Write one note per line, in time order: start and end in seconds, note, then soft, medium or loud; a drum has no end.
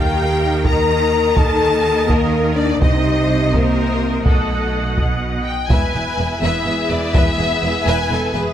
0.00 2.78 D#2 medium
0.00 2.78 D#3 medium
0.00 0.66 G4 medium
0.00 2.82 A#4 soft
0.00 0.62 F5 soft
0.00 0.65 G5 medium
0.00 0.66 G5 medium
0.64 1.37 A#4 medium
0.64 2.81 D#5 medium
0.64 1.36 A#5 medium
0.64 taiko medium
1.35 2.09 A4 loud
1.35 2.10 A5 medium
1.35 taiko medium
2.07 2.57 A#3 medium
2.07 2.57 A#4 medium
2.07 2.58 A#4 medium
2.07 taiko medium
2.55 2.80 D4 medium
2.55 2.81 D5 medium
2.80 4.23 C2 medium
2.80 4.23 C3 medium
2.80 3.53 D#4 medium
2.80 4.23 C5 medium
2.80 3.52 D#5 medium
2.80 4.23 D#5 medium
2.80 3.53 D#5 medium
2.80 taiko medium
3.54 4.26 A#3 medium
3.54 4.26 A#4 medium
3.54 taiko medium
4.24 5.48 B1 soft
4.24 5.48 B2 medium
4.24 4.97 A3 medium
4.24 4.97 A4 soft
4.24 4.99 A4 soft
4.24 5.48 D#5 soft
4.24 5.48 F#5 soft
4.24 taiko medium
4.98 taiko medium
5.45 5.68 G5 medium
5.68 5.79 E1 medium
5.68 5.78 E2 medium
5.68 8.53 E3 medium
5.68 8.53 B3 medium
5.68 8.53 E4 medium
5.68 8.53 B4 medium
5.68 6.39 B4 medium
5.68 5.93 B4 medium
5.68 5.93 E5 medium
5.68 8.53 E5 medium
5.68 6.42 G#5 medium
5.68 taiko medium
5.94 6.03 E1 soft
5.94 6.02 E2 soft
5.94 6.03 B4 soft
5.94 6.03 E5 soft
6.18 6.27 E1 soft
6.18 6.26 E2 soft
6.18 6.27 B4 soft
6.18 6.27 E5 soft
6.41 6.51 E1 medium
6.41 6.49 E2 medium
6.41 7.13 G#4 medium
6.41 6.65 B4 medium
6.41 6.89 E5 medium
6.41 6.65 E5 medium
6.65 6.75 E1 soft
6.65 6.73 E2 soft
6.65 6.75 B4 soft
6.65 6.74 E5 soft
6.89 6.99 E1 soft
6.89 6.97 E2 soft
6.89 6.97 B4 soft
6.89 7.15 D5 medium
6.89 6.98 E5 soft
7.13 7.23 E1 medium
7.13 7.22 E2 medium
7.13 7.85 G#4 medium
7.13 7.37 B4 medium
7.13 7.86 E5 medium
7.13 7.37 E5 medium
7.13 taiko medium
7.38 7.46 E1 soft
7.38 7.46 E2 soft
7.38 7.47 B4 soft
7.38 7.48 E5 soft
7.62 7.71 E1 soft
7.62 7.70 E2 medium
7.62 7.72 B4 soft
7.62 7.71 E5 soft
7.85 7.95 E1 medium
7.85 7.94 E2 medium
7.85 8.11 B4 medium
7.85 8.10 B4 medium
7.85 8.09 E5 medium
7.85 8.34 G#5 medium
8.10 8.19 E1 medium
8.10 8.18 E2 medium
8.10 8.35 A4 medium
8.10 8.20 B4 medium
8.10 8.21 E5 medium
8.33 8.43 E1 soft
8.33 8.41 E2 medium
8.33 8.53 G#4 medium
8.33 8.43 B4 medium
8.33 8.43 E5 medium